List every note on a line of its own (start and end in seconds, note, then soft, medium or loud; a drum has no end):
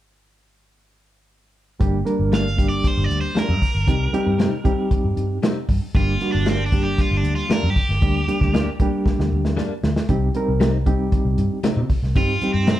1.80 2.01 G1 medium
1.80 1.98 G3 medium
1.80 1.98 A#3 medium
1.80 1.99 D4 medium
1.80 1.99 G4 medium
1.80 kick loud
1.80 closed hi-hat medium
2.05 2.42 G3 medium
2.05 2.42 A#3 medium
2.05 2.42 D4 medium
2.05 2.42 A#4 medium
2.05 closed hi-hat medium
2.19 2.80 G1 medium
2.32 2.48 G2 medium
2.32 2.48 G3 medium
2.32 2.49 A#3 medium
2.32 2.49 D4 medium
2.32 2.67 F5 medium
2.32 snare medium
2.32 closed hi-hat medium
2.57 3.29 G3 medium
2.57 3.29 A#3 medium
2.57 3.30 D4 medium
2.57 3.30 G4 medium
2.57 kick medium
2.57 closed hi-hat medium
2.69 2.87 D5 medium
2.84 3.04 C5 medium
2.84 kick medium
2.84 closed hi-hat medium
2.97 3.07 G1 medium
3.04 3.20 D5 medium
3.09 3.20 D2 medium
3.09 closed hi-hat medium
3.21 3.39 C5 medium
3.35 3.51 G2 medium
3.35 3.51 G3 medium
3.35 3.52 A#3 medium
3.35 3.52 D4 medium
3.35 4.89 A#4 medium
3.35 muted fingered electric bass stroke soft
3.35 snare loud
3.35 closed hi-hat medium
3.49 3.59 G2 medium
3.62 kick medium
3.62 open hi-hat medium
3.75 3.85 G1 medium
3.87 4.08 C2 medium
3.87 4.05 G3 medium
3.87 4.06 C4 medium
3.87 4.06 D#4 medium
3.87 4.06 G4 medium
3.87 kick medium
3.87 closed hi-hat medium
4.13 4.49 G3 medium
4.13 4.50 C4 medium
4.13 4.50 D#4 medium
4.13 4.50 G4 medium
4.13 muted fingered electric bass stroke soft
4.13 closed hi-hat medium
4.27 4.47 G2 medium
4.39 4.55 C3 medium
4.39 4.55 G3 medium
4.39 4.56 C4 medium
4.39 4.56 D#4 medium
4.39 snare medium
4.39 closed hi-hat medium
4.64 5.37 G3 medium
4.64 5.37 C4 medium
4.64 5.37 D#4 medium
4.64 5.37 G4 medium
4.64 kick medium
4.64 closed hi-hat medium
4.91 kick medium
4.91 closed hi-hat medium
5.04 5.14 G2 medium
5.17 5.38 G2 medium
5.17 closed hi-hat soft
5.43 5.59 C3 medium
5.43 5.59 G3 medium
5.43 5.59 C4 medium
5.43 5.60 D#4 medium
5.43 snare loud
5.43 closed hi-hat medium
5.69 5.79 G2 medium
5.69 kick medium
5.69 open hi-hat medium
5.95 6.15 G1 medium
5.95 6.13 G3 medium
5.95 6.13 A#3 medium
5.95 6.13 D4 medium
5.95 6.29 F4 medium
5.95 6.14 G4 medium
5.95 kick loud
5.95 closed hi-hat medium
6.21 6.57 G3 medium
6.21 6.57 A#3 medium
6.21 6.57 D4 medium
6.21 6.57 F#4 medium
6.21 closed hi-hat medium
6.32 6.95 G1 medium
6.32 6.48 D4 medium
6.46 6.62 G2 medium
6.46 6.63 G3 medium
6.46 6.63 A#3 medium
6.46 6.63 D4 medium
6.46 snare medium
6.46 closed hi-hat medium
6.50 6.65 C4 medium
6.66 6.82 D4 medium
6.72 7.44 G3 medium
6.72 7.44 A#3 medium
6.72 7.44 D4 medium
6.72 7.45 G4 medium
6.72 kick medium
6.72 closed hi-hat medium
6.83 6.99 G4 medium
6.98 7.17 F4 medium
6.98 kick medium
6.98 closed hi-hat medium
7.11 7.21 G1 medium
7.17 7.33 D4 medium
7.23 7.34 D2 medium
7.23 closed hi-hat medium
7.36 7.51 F4 medium
7.49 7.66 G2 medium
7.49 7.66 G3 medium
7.49 7.66 A#3 medium
7.49 7.66 D4 medium
7.49 7.70 A#4 medium
7.49 muted fingered electric bass stroke soft
7.49 snare loud
7.49 closed hi-hat medium
7.63 7.73 G2 medium
7.70 8.69 G4 medium
7.76 kick medium
7.76 open hi-hat medium
7.89 7.99 G1 medium
7.89 snare soft
8.02 8.23 D2 medium
8.02 8.20 G3 medium
8.02 8.20 A#3 medium
8.02 8.20 D4 medium
8.02 8.21 G4 medium
8.02 kick loud
8.02 closed hi-hat medium
8.28 8.64 G3 medium
8.28 8.64 A#3 medium
8.28 8.64 D4 medium
8.28 8.64 G4 medium
8.28 muted fingered electric bass stroke soft
8.28 closed hi-hat medium
8.41 8.61 D2 medium
8.41 kick medium
8.41 snare soft
8.53 8.69 G2 medium
8.53 8.70 G3 medium
8.53 8.70 A#3 medium
8.53 8.70 D4 medium
8.53 snare medium
8.53 closed hi-hat medium
8.80 9.52 G3 medium
8.80 9.52 A#3 medium
8.80 9.52 D4 medium
8.80 9.52 G4 medium
8.80 kick medium
8.80 closed hi-hat medium
9.06 kick medium
9.06 snare medium
9.19 9.29 D2 medium
9.19 snare medium
9.32 9.52 D2 medium
9.45 snare medium
9.57 9.73 G2 medium
9.57 9.73 G3 medium
9.57 9.73 A#3 medium
9.57 9.74 D4 medium
9.57 snare medium
9.83 9.94 D2 medium
9.83 snare medium
9.96 snare medium
10.09 10.29 C2 medium
10.09 10.27 G3 medium
10.09 10.27 C4 medium
10.09 10.27 D#4 medium
10.09 10.28 G4 medium
10.09 kick medium
10.09 closed hi-hat medium
10.34 10.71 G3 medium
10.34 10.71 C4 medium
10.34 10.71 D#4 medium
10.34 10.72 A#4 medium
10.34 closed hi-hat medium
10.48 11.09 C2 medium
10.60 10.76 C3 medium
10.60 10.77 G3 medium
10.60 10.77 C4 medium
10.60 10.77 D#4 medium
10.60 snare medium
10.60 closed hi-hat medium
10.86 11.58 G3 medium
10.86 11.58 C4 medium
10.86 11.58 D#4 medium
10.86 11.58 G4 medium
10.86 kick medium
10.86 closed hi-hat medium
11.12 kick medium
11.12 closed hi-hat medium
11.25 11.35 C2 medium
11.38 11.48 G2 medium
11.38 closed hi-hat medium
11.64 11.80 C3 medium
11.64 11.80 G3 medium
11.64 11.80 C4 medium
11.64 11.81 D#4 medium
11.64 muted fingered electric bass stroke soft
11.64 snare loud
11.64 closed hi-hat medium
11.76 11.87 C3 medium
11.90 kick medium
11.90 open hi-hat medium
12.03 12.13 C2 medium
12.03 snare soft
12.15 12.36 G2 medium
12.15 12.34 G3 medium
12.15 12.34 C4 medium
12.15 12.34 D#4 medium
12.15 12.50 F4 medium
12.15 12.34 G4 medium
12.15 kick medium
12.15 closed hi-hat medium
12.41 12.78 G3 medium
12.41 12.78 C4 medium
12.41 12.78 D#4 medium
12.41 12.79 G4 medium
12.41 muted fingered electric bass stroke soft
12.41 closed hi-hat medium
12.53 12.75 G2 medium
12.53 12.69 C4 medium
12.67 12.80 C3 medium
12.67 12.80 G3 medium
12.67 12.80 C4 medium
12.67 12.80 D#4 medium
12.67 snare medium
12.67 closed hi-hat medium